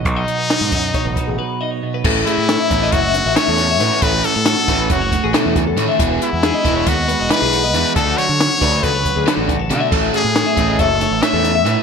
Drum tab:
CC |---------|x--------|---------|---------|
HH |xxxxxx---|-xxxxxxxx|xxxxxxxxx|xxxxxxxxx|
SD |--oooo---|--oo-oo-o|--oo-oo--|--o---o-o|
BD |o--ooo---|o--oo----|o--ooo-o-|o--oo----|

CC |---------|x--------|
HH |xxxxxxxxx|-xxxxxxxx|
SD |--o---o--|--o--oooo|
BD |o--ooo-o-|o--oo----|